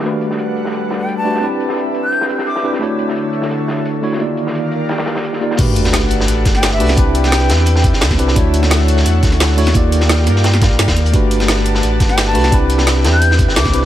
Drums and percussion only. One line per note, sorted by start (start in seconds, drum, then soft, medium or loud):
0.04 closed hi-hat medium
0.21 closed hi-hat medium
0.31 snare soft
0.38 closed hi-hat medium
0.56 closed hi-hat medium
0.65 snare medium
0.72 closed hi-hat medium
0.90 snare medium
0.90 closed hi-hat medium
1.00 closed hi-hat soft
1.08 closed hi-hat medium
1.25 open hi-hat medium
1.34 snare soft
1.43 closed hi-hat medium
1.60 closed hi-hat medium
1.69 snare soft
1.77 closed hi-hat medium
1.94 closed hi-hat medium
2.12 closed hi-hat medium
2.21 snare medium
2.29 closed hi-hat medium
2.38 snare soft
2.47 closed hi-hat medium
2.56 snare soft
2.65 closed hi-hat medium
2.73 snare soft
2.82 closed hi-hat medium
2.99 closed hi-hat medium
3.08 snare soft
3.16 closed hi-hat medium
3.33 closed hi-hat medium
3.42 snare medium
3.51 closed hi-hat medium
3.68 snare medium
3.68 closed hi-hat medium
3.77 closed hi-hat soft
3.85 closed hi-hat medium
4.03 open hi-hat medium
4.12 snare soft
4.20 closed hi-hat medium
4.37 closed hi-hat medium
4.47 snare soft
4.55 closed hi-hat medium
4.71 closed hi-hat medium
4.89 snare medium
4.89 closed hi-hat medium
4.98 snare loud
4.98 closed hi-hat medium
5.06 snare loud
5.06 closed hi-hat medium
5.15 snare medium
5.15 closed hi-hat medium
5.24 closed hi-hat medium
5.33 snare soft
5.41 closed hi-hat medium
5.51 snare soft
5.59 kick loud
5.59 closed hi-hat medium
5.59 crash loud
5.76 closed hi-hat medium
5.85 snare soft
5.93 snare loud
5.93 closed hi-hat medium
5.93 closed hi-hat loud
6.11 closed hi-hat medium
6.21 snare medium
6.28 closed hi-hat medium
6.45 kick loud
6.45 snare medium
6.45 closed hi-hat medium
6.55 snare soft
6.55 closed hi-hat soft
6.63 snare loud
6.63 closed hi-hat medium
6.80 closed hi-hat medium
6.80 open hi-hat medium
6.89 snare soft
6.89 snare medium
6.97 kick loud
6.97 closed hi-hat medium
7.15 closed hi-hat medium
7.24 snare soft
7.32 snare loud
7.32 closed hi-hat loud
7.32 closed hi-hat medium
7.49 snare loud
7.49 snare soft
7.49 closed hi-hat medium
7.66 closed hi-hat medium
7.76 snare medium
7.84 kick loud
7.84 closed hi-hat medium
7.93 snare soft
8.01 snare loud
8.01 closed hi-hat medium
8.10 kick medium
8.10 snare medium
8.10 snare soft
8.19 closed hi-hat medium
8.28 snare medium
8.36 kick loud
8.36 closed hi-hat medium
8.54 closed hi-hat medium
8.63 snare soft
8.71 snare loud
8.71 closed hi-hat medium
8.88 closed hi-hat medium
8.97 snare medium
9.06 closed hi-hat medium
9.23 kick loud
9.23 snare medium
9.23 closed hi-hat medium
9.32 snare soft
9.32 closed hi-hat soft
9.40 snare loud
9.40 closed hi-hat loud
9.40 closed hi-hat medium
9.58 closed hi-hat medium
9.58 open hi-hat medium
9.67 snare soft
9.67 snare medium
9.74 kick loud
9.74 closed hi-hat medium
9.92 closed hi-hat medium
10.01 snare soft
10.09 snare loud
10.09 closed hi-hat medium
10.27 snare soft
10.27 closed hi-hat medium
10.36 snare soft
10.44 snare loud
10.44 closed hi-hat medium
10.54 snare medium
10.61 kick loud
10.61 snare loud
10.61 closed hi-hat medium
10.79 snare loud
10.79 closed hi-hat medium
10.88 kick medium
10.88 snare loud
10.88 snare soft
10.88 closed hi-hat medium
10.97 closed hi-hat medium
11.06 closed hi-hat medium
11.14 kick loud
11.14 closed hi-hat medium
11.31 closed hi-hat medium
11.40 snare soft
11.48 snare loud
11.48 closed hi-hat medium
11.66 closed hi-hat medium
11.75 snare medium
11.83 closed hi-hat medium
12.00 kick loud
12.00 snare soft
12.00 closed hi-hat medium
12.09 snare soft
12.09 closed hi-hat soft
12.17 snare loud
12.17 closed hi-hat loud
12.17 closed hi-hat medium
12.35 closed hi-hat medium
12.35 open hi-hat medium
12.44 snare soft
12.44 snare medium
12.52 kick loud
12.52 closed hi-hat medium
12.70 closed hi-hat medium
12.78 snare medium
12.78 snare soft
12.87 snare loud
12.87 closed hi-hat medium
13.05 snare loud
13.05 snare soft
13.05 closed hi-hat medium
13.22 closed hi-hat loud
13.22 closed hi-hat medium
13.31 snare medium
13.39 kick loud
13.39 closed hi-hat medium
13.49 snare medium
13.56 snare loud
13.56 closed hi-hat medium
13.65 kick medium
13.65 snare medium
13.65 snare soft
13.74 closed hi-hat medium